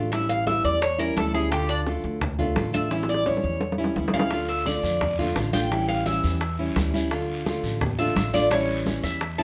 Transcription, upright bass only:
0, 0, Header, 1, 2, 480
1, 0, Start_track
1, 0, Key_signature, -1, "minor"
1, 0, Tempo, 349650
1, 163, Time_signature, 4, 2, 24, 8
1, 12946, End_track
2, 0, Start_track
2, 0, Title_t, "Upright bass"
2, 0, Program_c, 0, 32
2, 0, Note_on_c, 0, 33, 90
2, 805, Note_off_c, 0, 33, 0
2, 883, Note_on_c, 0, 40, 93
2, 1551, Note_off_c, 0, 40, 0
2, 1596, Note_on_c, 0, 38, 87
2, 2718, Note_off_c, 0, 38, 0
2, 2797, Note_on_c, 0, 38, 102
2, 3468, Note_off_c, 0, 38, 0
2, 3513, Note_on_c, 0, 33, 87
2, 4637, Note_off_c, 0, 33, 0
2, 4719, Note_on_c, 0, 40, 97
2, 5389, Note_off_c, 0, 40, 0
2, 5441, Note_on_c, 0, 38, 87
2, 6563, Note_off_c, 0, 38, 0
2, 6631, Note_on_c, 0, 41, 92
2, 7307, Note_off_c, 0, 41, 0
2, 7358, Note_on_c, 0, 33, 86
2, 8483, Note_off_c, 0, 33, 0
2, 8563, Note_on_c, 0, 40, 100
2, 9234, Note_off_c, 0, 40, 0
2, 9280, Note_on_c, 0, 38, 80
2, 10405, Note_off_c, 0, 38, 0
2, 10478, Note_on_c, 0, 33, 93
2, 11152, Note_off_c, 0, 33, 0
2, 11198, Note_on_c, 0, 33, 92
2, 12323, Note_off_c, 0, 33, 0
2, 12397, Note_on_c, 0, 40, 95
2, 12946, Note_off_c, 0, 40, 0
2, 12946, End_track
0, 0, End_of_file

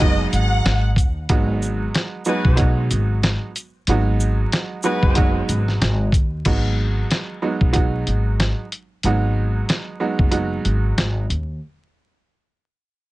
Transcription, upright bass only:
0, 0, Header, 1, 2, 480
1, 0, Start_track
1, 0, Key_signature, 5, "minor"
1, 0, Tempo, 645161
1, 963, Time_signature, 4, 2, 24, 8
1, 9755, End_track
2, 0, Start_track
2, 0, Title_t, "Upright bass"
2, 0, Program_c, 0, 32
2, 0, Note_on_c, 0, 30, 90
2, 200, Note_off_c, 0, 30, 0
2, 244, Note_on_c, 0, 32, 94
2, 453, Note_off_c, 0, 32, 0
2, 484, Note_on_c, 0, 32, 101
2, 693, Note_off_c, 0, 32, 0
2, 717, Note_on_c, 0, 39, 96
2, 929, Note_off_c, 0, 39, 0
2, 964, Note_on_c, 0, 32, 114
2, 1383, Note_off_c, 0, 32, 0
2, 1821, Note_on_c, 0, 35, 92
2, 2120, Note_off_c, 0, 35, 0
2, 2164, Note_on_c, 0, 32, 96
2, 2493, Note_off_c, 0, 32, 0
2, 2883, Note_on_c, 0, 32, 107
2, 3302, Note_off_c, 0, 32, 0
2, 3740, Note_on_c, 0, 30, 91
2, 4039, Note_off_c, 0, 30, 0
2, 4084, Note_on_c, 0, 32, 92
2, 4293, Note_off_c, 0, 32, 0
2, 4324, Note_on_c, 0, 32, 97
2, 4533, Note_off_c, 0, 32, 0
2, 4556, Note_on_c, 0, 39, 94
2, 4769, Note_off_c, 0, 39, 0
2, 4804, Note_on_c, 0, 32, 104
2, 5222, Note_off_c, 0, 32, 0
2, 5661, Note_on_c, 0, 35, 83
2, 5960, Note_off_c, 0, 35, 0
2, 6005, Note_on_c, 0, 32, 87
2, 6334, Note_off_c, 0, 32, 0
2, 6725, Note_on_c, 0, 32, 103
2, 7143, Note_off_c, 0, 32, 0
2, 7582, Note_on_c, 0, 30, 85
2, 7880, Note_off_c, 0, 30, 0
2, 7924, Note_on_c, 0, 32, 96
2, 8133, Note_off_c, 0, 32, 0
2, 8163, Note_on_c, 0, 32, 87
2, 8373, Note_off_c, 0, 32, 0
2, 8404, Note_on_c, 0, 39, 89
2, 8613, Note_off_c, 0, 39, 0
2, 9755, End_track
0, 0, End_of_file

